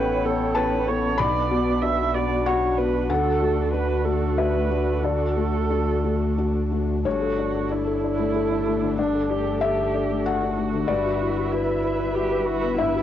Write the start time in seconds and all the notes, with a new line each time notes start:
Already playing: A1 B3 C#4 E4 A4 B4 C#5 F#5 G5
0.25 B3 A4
0.55 C#4 A4 B4 A5
0.88 B3 A4 C#5
1.18 B1 D4 F#4 D5 B5
1.51 B3 F#4
1.82 D4 F#4 E5
2.14 B3 F#4 D5
2.46 D4 F#4 C#5 F#5
2.77 B3 F#4 B4
3.09 D2 A3 A4 F#5
3.42 A3 F#4
3.74 D4 F#4 B4
4.05 A3 F#4 A4
4.38 D4 F#4 B4 E5
4.70 A3 F#4
5.03 D2 A4 D5
5.37 A3 F#4
5.70 D4 F#4
6.04 A3 F#4
6.38 D4 F#4
6.72 A3 F#4
7.05 G1 G2 A3 D4 F#4 A4 C#5
7.22 A4
7.38 D4
7.54 A4
7.71 D4 E4
7.87 A4
8.04 D4
8.19 A3
8.36 A4
8.51 D4
8.67 A3
8.82 D3
8.98 G2 D4 D5
9.15 A4
9.30 D4 G4
9.46 A4
9.61 D4 G4 E5
9.78 A4
9.94 D4
10.10 A3
10.25 F#4 A4 F#5
10.43 D4
10.58 A3
10.74 D3
10.88 G1 G2 G3 B4 D5 E5
11.05 F#4
11.21 E4
11.38 F#4
11.52 E4 B4
11.69 F#4
11.84 B4
11.99 E4
12.15 F#4 G4
12.31 B4
12.46 E4 F#4
12.63 B3
12.77 G2 E4 E5
12.94 F#4